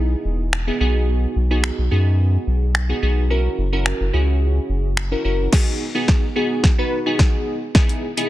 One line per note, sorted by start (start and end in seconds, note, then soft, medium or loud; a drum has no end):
0.00 0.15 B1 loud
0.00 0.43 B3 medium
0.00 0.43 D#4 medium
0.00 0.43 E4 medium
0.00 0.43 G#4 medium
0.25 0.71 E1 medium
0.53 finger snap loud
0.67 0.77 B3 medium
0.67 0.77 D#4 medium
0.67 0.77 E4 medium
0.67 0.77 G#4 medium
0.80 1.26 B1 medium
0.80 1.36 B3 medium
0.80 1.36 D#4 medium
0.80 1.36 F#4 medium
0.80 1.36 G#4 loud
1.36 1.71 B1 medium
1.51 1.82 B3 medium
1.51 1.82 D#4 medium
1.51 1.82 F#4 medium
1.51 1.82 G#4 medium
1.64 finger snap loud
1.78 1.89 B1 medium
1.91 2.37 F#2 loud
1.91 2.65 B3 medium
1.91 2.65 D#4 medium
1.91 2.65 F#4 medium
1.91 2.65 G#4 medium
2.47 2.93 B1 medium
2.75 finger snap loud
2.89 2.99 B3 medium
2.89 2.99 D#4 medium
2.89 2.99 F#4 medium
2.89 3.00 G#4 medium
3.02 3.48 B1 loud
3.02 3.24 B3 medium
3.02 3.24 D#4 medium
3.02 3.24 F#4 medium
3.02 3.24 G#4 medium
3.30 3.62 C#4 medium
3.30 3.62 E4 medium
3.30 3.62 F#4 medium
3.30 3.62 A#4 medium
3.58 3.93 F#1 medium
3.72 4.04 C#4 medium
3.72 4.04 E4 medium
3.72 4.04 F#4 medium
3.72 4.04 A#4 medium
3.86 finger snap loud
4.01 4.11 F#1 medium
4.13 4.59 C#2 loud
4.13 4.87 C#4 medium
4.13 4.87 E4 medium
4.13 4.88 F#4 medium
4.13 4.88 G#4 medium
4.69 5.15 F#1 medium
4.97 finger snap loud
5.11 5.22 C#4 medium
5.11 5.22 E4 medium
5.11 5.22 F#4 medium
5.11 5.22 A#4 medium
5.25 5.48 F#1 medium
5.25 5.46 C#4 medium
5.25 5.46 E4 medium
5.25 5.46 F#4 medium
5.25 5.46 A#4 medium
5.52 5.84 B3 medium
5.52 5.84 D#4 medium
5.52 5.84 F#4 medium
5.52 5.84 G#4 medium
5.52 kick loud
5.52 snare medium
5.52 crash medium
5.95 6.26 B3 medium
5.95 6.26 D#4 medium
5.95 6.26 F#4 medium
5.95 6.26 G#4 medium
6.08 kick medium
6.08 snare medium
6.36 6.67 B3 medium
6.36 6.68 D#4 medium
6.36 6.68 F#4 medium
6.36 6.68 G#4 medium
6.64 kick loud
6.64 snare medium
6.78 6.99 B3 medium
6.78 6.99 D#4 medium
6.78 6.99 F#4 medium
6.78 6.99 B4 medium
7.06 7.58 B3 medium
7.06 7.58 D#4 medium
7.06 7.58 F#4 medium
7.06 7.59 G#4 medium
7.19 kick loud
7.19 snare medium
7.75 8.06 B3 medium
7.75 8.07 D#4 medium
7.75 8.07 E4 medium
7.75 8.07 G#4 medium
7.75 kick loud
7.75 snare medium
7.89 closed hi-hat soft
8.17 8.29 B3 medium
8.17 8.29 D#4 medium
8.17 8.29 E4 medium
8.17 8.29 G#4 medium
8.17 closed hi-hat medium